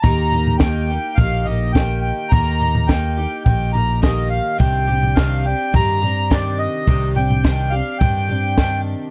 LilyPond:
<<
  \new Staff \with { instrumentName = "Accordion" } { \time 4/4 \key c \minor \tempo 4 = 105 bes''4 g''4 f''8 ees''8 g''8 g''8 | bes''4 g''4 g''8 bes''8 ees''8 f''8 | g''4 f''8 g''8 bes''4 d''8 ees''8~ | ees''8 g''4 f''8 g''4. r8 | }
  \new Staff \with { instrumentName = "Twelve-string acoustic guitar" } { \time 4/4 \key c \minor <ees bes ees' g'>8 <bes ees' g'>8 <ees bes ees' g'>8 <bes ees' g'>8 <ees bes ees' g'>8 <bes ees' g'>8 <ees bes ees' g'>4 | <ees bes ees' g'>8 <bes ees' g'>8 <ees bes ees' g'>8 <bes ees' g'>8 <ees bes ees' g'>8 <bes ees' g'>8 <ees bes ees' g'>4 | <c ees c' d' g'>8 <c' d' g'>8 <c ees c' d' g'>8 <c' d' g'>8 <ees c' d' g'>8 <c' d' g'>8 <c ees c' d' g'>4 | <c ees c' d' g'>8 <c' d' g'>8 <c ees c' d' g'>8 <c' d' g'>8 <ees c' d' g'>8 <c' d' g'>8 <c ees c' d' g'>4 | }
  \new Staff \with { instrumentName = "Fingered electric bass" } { \clef bass \time 4/4 \key c \minor ees,2 bes,,2 | ees,2 bes,,2 | c,2 g,2 | c,2 g,2 | }
  \new DrumStaff \with { instrumentName = "Drums" } \drummode { \time 4/4 <bd tomfh>8 tomfh16 tomfh16 <bd sn>4 <bd tomfh>8 tomfh8 <bd sn>4 | <bd tomfh>8 tomfh16 tomfh16 <bd sn>4 <bd tomfh>8 tomfh8 <bd sn>4 | <bd tomfh>8 tomfh16 tomfh16 <bd sn>4 <bd tomfh>8 tomfh8 <bd sn>4 | <bd tomfh>8 tomfh16 tomfh16 <bd sn>4 <bd tomfh>8 tomfh8 <bd sn>4 | }
>>